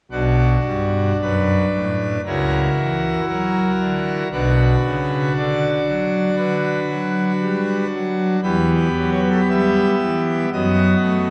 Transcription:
0, 0, Header, 1, 2, 480
1, 0, Start_track
1, 0, Key_signature, 2, "minor"
1, 0, Tempo, 1092896
1, 42, Time_signature, 4, 2, 24, 8
1, 523, Tempo, 1036269
1, 5206, End_track
2, 0, Start_track
2, 0, Title_t, "Pipe organ"
2, 0, Program_c, 0, 19
2, 48, Note_on_c, 0, 35, 57
2, 50, Note_on_c, 0, 47, 56
2, 50, Note_on_c, 0, 66, 80
2, 51, Note_on_c, 0, 62, 40
2, 250, Note_off_c, 0, 35, 0
2, 251, Note_off_c, 0, 47, 0
2, 288, Note_on_c, 0, 43, 52
2, 490, Note_off_c, 0, 43, 0
2, 512, Note_off_c, 0, 66, 0
2, 533, Note_on_c, 0, 42, 52
2, 535, Note_on_c, 0, 71, 87
2, 736, Note_off_c, 0, 42, 0
2, 782, Note_on_c, 0, 45, 47
2, 978, Note_off_c, 0, 45, 0
2, 991, Note_off_c, 0, 62, 0
2, 996, Note_off_c, 0, 71, 0
2, 1017, Note_on_c, 0, 70, 85
2, 1018, Note_on_c, 0, 64, 38
2, 1020, Note_on_c, 0, 49, 53
2, 1020, Note_on_c, 0, 66, 39
2, 1021, Note_on_c, 0, 37, 55
2, 1217, Note_off_c, 0, 49, 0
2, 1218, Note_off_c, 0, 37, 0
2, 1255, Note_on_c, 0, 52, 52
2, 1455, Note_off_c, 0, 52, 0
2, 1477, Note_off_c, 0, 70, 0
2, 1489, Note_on_c, 0, 54, 54
2, 1491, Note_on_c, 0, 70, 76
2, 1692, Note_off_c, 0, 54, 0
2, 1733, Note_on_c, 0, 50, 52
2, 1933, Note_off_c, 0, 50, 0
2, 1953, Note_off_c, 0, 64, 0
2, 1953, Note_off_c, 0, 70, 0
2, 1954, Note_off_c, 0, 66, 0
2, 1974, Note_on_c, 0, 47, 58
2, 1974, Note_on_c, 0, 66, 38
2, 1975, Note_on_c, 0, 35, 57
2, 1975, Note_on_c, 0, 62, 39
2, 1975, Note_on_c, 0, 71, 89
2, 2175, Note_off_c, 0, 47, 0
2, 2176, Note_off_c, 0, 35, 0
2, 2220, Note_on_c, 0, 49, 53
2, 2419, Note_off_c, 0, 49, 0
2, 2438, Note_off_c, 0, 71, 0
2, 2462, Note_on_c, 0, 50, 53
2, 2462, Note_on_c, 0, 74, 88
2, 2658, Note_off_c, 0, 50, 0
2, 2692, Note_on_c, 0, 54, 47
2, 2890, Note_off_c, 0, 54, 0
2, 2915, Note_off_c, 0, 74, 0
2, 2921, Note_on_c, 0, 50, 55
2, 2921, Note_on_c, 0, 71, 79
2, 3124, Note_off_c, 0, 50, 0
2, 3160, Note_on_c, 0, 54, 48
2, 3362, Note_off_c, 0, 54, 0
2, 3404, Note_on_c, 0, 55, 53
2, 3604, Note_off_c, 0, 55, 0
2, 3617, Note_off_c, 0, 71, 0
2, 3643, Note_on_c, 0, 54, 53
2, 3844, Note_off_c, 0, 54, 0
2, 3862, Note_off_c, 0, 66, 0
2, 3863, Note_off_c, 0, 62, 0
2, 3875, Note_on_c, 0, 71, 82
2, 3876, Note_on_c, 0, 52, 56
2, 3876, Note_on_c, 0, 59, 42
2, 3877, Note_on_c, 0, 40, 62
2, 3879, Note_on_c, 0, 67, 39
2, 4086, Note_off_c, 0, 52, 0
2, 4087, Note_off_c, 0, 40, 0
2, 4123, Note_on_c, 0, 54, 55
2, 4187, Note_off_c, 0, 71, 0
2, 4196, Note_on_c, 0, 73, 75
2, 4234, Note_off_c, 0, 73, 0
2, 4235, Note_on_c, 0, 71, 77
2, 4275, Note_off_c, 0, 71, 0
2, 4281, Note_on_c, 0, 69, 66
2, 4320, Note_off_c, 0, 69, 0
2, 4325, Note_on_c, 0, 71, 70
2, 4335, Note_off_c, 0, 54, 0
2, 4363, Note_off_c, 0, 71, 0
2, 4371, Note_on_c, 0, 55, 54
2, 4371, Note_on_c, 0, 76, 92
2, 4577, Note_off_c, 0, 55, 0
2, 4612, Note_on_c, 0, 52, 48
2, 4814, Note_off_c, 0, 52, 0
2, 4832, Note_off_c, 0, 59, 0
2, 4833, Note_off_c, 0, 67, 0
2, 4836, Note_off_c, 0, 76, 0
2, 4846, Note_on_c, 0, 42, 57
2, 4846, Note_on_c, 0, 59, 39
2, 4846, Note_on_c, 0, 66, 43
2, 4848, Note_on_c, 0, 75, 84
2, 4849, Note_on_c, 0, 54, 60
2, 5047, Note_off_c, 0, 42, 0
2, 5048, Note_off_c, 0, 54, 0
2, 5073, Note_on_c, 0, 57, 52
2, 5206, Note_off_c, 0, 57, 0
2, 5206, Note_off_c, 0, 59, 0
2, 5206, Note_off_c, 0, 66, 0
2, 5206, Note_off_c, 0, 75, 0
2, 5206, End_track
0, 0, End_of_file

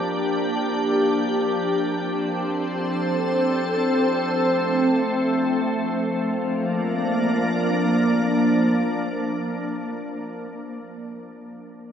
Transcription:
0, 0, Header, 1, 2, 480
1, 0, Start_track
1, 0, Key_signature, -2, "major"
1, 0, Tempo, 500000
1, 11443, End_track
2, 0, Start_track
2, 0, Title_t, "Ambient pad"
2, 0, Program_c, 0, 92
2, 0, Note_on_c, 0, 53, 69
2, 0, Note_on_c, 0, 58, 79
2, 0, Note_on_c, 0, 62, 75
2, 0, Note_on_c, 0, 67, 72
2, 0, Note_on_c, 0, 70, 67
2, 1396, Note_off_c, 0, 70, 0
2, 1398, Note_off_c, 0, 58, 0
2, 1800, Note_on_c, 0, 60, 84
2, 2270, Note_off_c, 0, 67, 0
2, 2374, Note_on_c, 0, 72, 68
2, 2395, Note_on_c, 0, 69, 78
2, 4164, Note_on_c, 0, 57, 62
2, 4442, Note_off_c, 0, 62, 0
2, 5734, Note_off_c, 0, 53, 0
2, 5745, Note_on_c, 0, 53, 77
2, 5748, Note_off_c, 0, 57, 0
2, 5753, Note_off_c, 0, 72, 0
2, 5755, Note_off_c, 0, 69, 0
2, 5759, Note_off_c, 0, 60, 0
2, 5924, Note_on_c, 0, 58, 71
2, 6070, Note_on_c, 0, 62, 66
2, 6226, Note_on_c, 0, 70, 72
2, 6373, Note_on_c, 0, 74, 63
2, 9221, Note_off_c, 0, 53, 0
2, 9400, Note_off_c, 0, 58, 0
2, 9546, Note_off_c, 0, 62, 0
2, 9701, Note_off_c, 0, 70, 0
2, 9849, Note_off_c, 0, 74, 0
2, 11443, End_track
0, 0, End_of_file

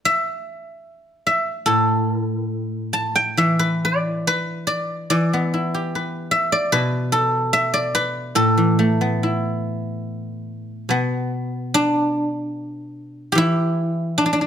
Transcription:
0, 0, Header, 1, 2, 480
1, 0, Start_track
1, 0, Tempo, 809717
1, 41, Time_signature, 2, 2, 24, 8
1, 1002, Tempo, 855920
1, 2922, Tempo, 813008
1, 4842, Tempo, 849858
1, 6762, Tempo, 803213
1, 8377, End_track
2, 0, Start_track
2, 0, Title_t, "Guzheng"
2, 0, Program_c, 0, 107
2, 0, Note_on_c, 0, 74, 90
2, 31, Note_on_c, 0, 76, 104
2, 175, Note_off_c, 0, 74, 0
2, 748, Note_off_c, 0, 76, 0
2, 751, Note_on_c, 0, 76, 85
2, 983, Note_on_c, 0, 69, 88
2, 991, Note_on_c, 0, 45, 53
2, 1236, Note_off_c, 0, 69, 0
2, 1236, Note_on_c, 0, 70, 88
2, 1303, Note_off_c, 0, 70, 0
2, 1303, Note_on_c, 0, 69, 88
2, 1376, Note_off_c, 0, 69, 0
2, 1376, Note_on_c, 0, 70, 88
2, 1444, Note_off_c, 0, 70, 0
2, 1444, Note_on_c, 0, 69, 88
2, 1698, Note_on_c, 0, 81, 81
2, 1730, Note_off_c, 0, 76, 0
2, 1824, Note_on_c, 0, 79, 82
2, 1946, Note_on_c, 0, 52, 50
2, 1950, Note_on_c, 0, 76, 83
2, 2069, Note_on_c, 0, 71, 78
2, 2212, Note_on_c, 0, 74, 78
2, 2215, Note_off_c, 0, 69, 0
2, 2444, Note_off_c, 0, 45, 0
2, 2448, Note_off_c, 0, 71, 0
2, 2451, Note_on_c, 0, 71, 92
2, 2511, Note_off_c, 0, 81, 0
2, 2670, Note_off_c, 0, 74, 0
2, 2673, Note_on_c, 0, 74, 80
2, 2696, Note_off_c, 0, 79, 0
2, 2911, Note_off_c, 0, 52, 0
2, 2912, Note_off_c, 0, 76, 0
2, 2914, Note_off_c, 0, 74, 0
2, 2914, Note_on_c, 0, 74, 85
2, 2917, Note_on_c, 0, 52, 55
2, 3044, Note_off_c, 0, 74, 0
2, 3044, Note_on_c, 0, 75, 85
2, 3052, Note_on_c, 0, 59, 47
2, 3126, Note_off_c, 0, 75, 0
2, 3126, Note_on_c, 0, 76, 85
2, 3171, Note_on_c, 0, 64, 40
2, 3294, Note_on_c, 0, 67, 46
2, 3415, Note_off_c, 0, 71, 0
2, 3417, Note_on_c, 0, 71, 49
2, 3627, Note_off_c, 0, 76, 0
2, 3630, Note_on_c, 0, 76, 88
2, 3754, Note_on_c, 0, 74, 88
2, 3864, Note_off_c, 0, 71, 0
2, 3871, Note_on_c, 0, 71, 102
2, 3875, Note_on_c, 0, 47, 59
2, 4007, Note_off_c, 0, 59, 0
2, 4107, Note_on_c, 0, 69, 87
2, 4125, Note_off_c, 0, 64, 0
2, 4245, Note_off_c, 0, 67, 0
2, 4346, Note_off_c, 0, 76, 0
2, 4349, Note_on_c, 0, 76, 94
2, 4360, Note_off_c, 0, 52, 0
2, 4468, Note_off_c, 0, 74, 0
2, 4470, Note_on_c, 0, 74, 88
2, 4592, Note_off_c, 0, 71, 0
2, 4594, Note_on_c, 0, 71, 97
2, 4834, Note_off_c, 0, 69, 0
2, 4834, Note_on_c, 0, 45, 63
2, 4836, Note_off_c, 0, 47, 0
2, 4837, Note_on_c, 0, 69, 91
2, 4960, Note_on_c, 0, 52, 45
2, 5080, Note_on_c, 0, 57, 52
2, 5205, Note_on_c, 0, 59, 51
2, 5331, Note_on_c, 0, 64, 49
2, 5343, Note_off_c, 0, 76, 0
2, 5530, Note_off_c, 0, 74, 0
2, 5761, Note_off_c, 0, 71, 0
2, 5919, Note_off_c, 0, 52, 0
2, 6041, Note_off_c, 0, 57, 0
2, 6077, Note_off_c, 0, 69, 0
2, 6165, Note_off_c, 0, 59, 0
2, 6267, Note_on_c, 0, 47, 49
2, 6276, Note_on_c, 0, 59, 64
2, 6278, Note_off_c, 0, 45, 0
2, 6289, Note_off_c, 0, 64, 0
2, 6749, Note_on_c, 0, 62, 96
2, 7692, Note_on_c, 0, 67, 78
2, 7710, Note_on_c, 0, 52, 52
2, 7722, Note_off_c, 0, 47, 0
2, 7725, Note_on_c, 0, 64, 100
2, 8101, Note_off_c, 0, 59, 0
2, 8201, Note_off_c, 0, 62, 0
2, 8203, Note_on_c, 0, 62, 86
2, 8249, Note_off_c, 0, 62, 0
2, 8251, Note_on_c, 0, 62, 59
2, 8291, Note_off_c, 0, 62, 0
2, 8293, Note_on_c, 0, 62, 61
2, 8341, Note_off_c, 0, 62, 0
2, 8343, Note_on_c, 0, 62, 40
2, 8376, Note_off_c, 0, 62, 0
2, 8377, Note_off_c, 0, 52, 0
2, 8377, Note_off_c, 0, 64, 0
2, 8377, Note_off_c, 0, 67, 0
2, 8377, End_track
0, 0, End_of_file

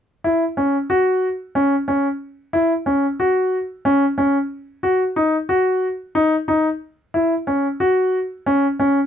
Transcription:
0, 0, Header, 1, 2, 480
1, 0, Start_track
1, 0, Key_signature, 4, "minor"
1, 0, Tempo, 657895
1, 1610, Time_signature, 7, 3, 24, 8
1, 6614, End_track
2, 0, Start_track
2, 0, Title_t, "Grand piano"
2, 0, Program_c, 0, 0
2, 178, Note_on_c, 0, 64, 53
2, 310, Note_off_c, 0, 64, 0
2, 417, Note_on_c, 0, 61, 59
2, 549, Note_off_c, 0, 61, 0
2, 655, Note_on_c, 0, 66, 66
2, 919, Note_off_c, 0, 66, 0
2, 1133, Note_on_c, 0, 61, 64
2, 1265, Note_off_c, 0, 61, 0
2, 1370, Note_on_c, 0, 61, 59
2, 1503, Note_off_c, 0, 61, 0
2, 1848, Note_on_c, 0, 64, 62
2, 1981, Note_off_c, 0, 64, 0
2, 2088, Note_on_c, 0, 61, 60
2, 2221, Note_off_c, 0, 61, 0
2, 2332, Note_on_c, 0, 66, 66
2, 2596, Note_off_c, 0, 66, 0
2, 2810, Note_on_c, 0, 61, 68
2, 2942, Note_off_c, 0, 61, 0
2, 3048, Note_on_c, 0, 61, 60
2, 3180, Note_off_c, 0, 61, 0
2, 3525, Note_on_c, 0, 66, 63
2, 3658, Note_off_c, 0, 66, 0
2, 3767, Note_on_c, 0, 63, 64
2, 3900, Note_off_c, 0, 63, 0
2, 4005, Note_on_c, 0, 66, 68
2, 4272, Note_off_c, 0, 66, 0
2, 4487, Note_on_c, 0, 63, 71
2, 4620, Note_off_c, 0, 63, 0
2, 4728, Note_on_c, 0, 63, 64
2, 4862, Note_off_c, 0, 63, 0
2, 5210, Note_on_c, 0, 64, 60
2, 5344, Note_off_c, 0, 64, 0
2, 5451, Note_on_c, 0, 61, 58
2, 5585, Note_off_c, 0, 61, 0
2, 5692, Note_on_c, 0, 66, 65
2, 5960, Note_off_c, 0, 66, 0
2, 6176, Note_on_c, 0, 61, 65
2, 6309, Note_off_c, 0, 61, 0
2, 6417, Note_on_c, 0, 61, 62
2, 6551, Note_off_c, 0, 61, 0
2, 6614, End_track
0, 0, End_of_file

